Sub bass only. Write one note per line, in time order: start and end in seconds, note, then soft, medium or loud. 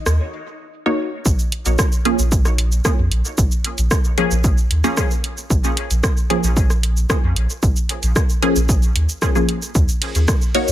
0.06 0.19 D#2 medium
1.26 1.36 A#1 loud
1.66 1.76 A#1 medium
2.19 2.80 A#1 medium
2.98 3.09 F2 loud
3.11 3.22 A#1 loud
3.38 3.48 A#1 loud
3.78 3.88 A#1 medium
4.31 4.66 A#1 medium
4.71 4.81 D#2 medium
5.50 5.61 A#1 loud
5.90 6.01 A#1 medium
6.43 7.05 A#1 medium
7.23 7.33 F2 loud
7.36 7.47 A#1 loud
7.63 7.73 A#1 loud
8.03 8.13 A#1 medium
8.56 8.91 A#1 medium
8.96 9.06 D#2 loud
9.75 9.86 D#2 loud
10.15 10.25 D#2 medium
10.68 10.72 D#2 medium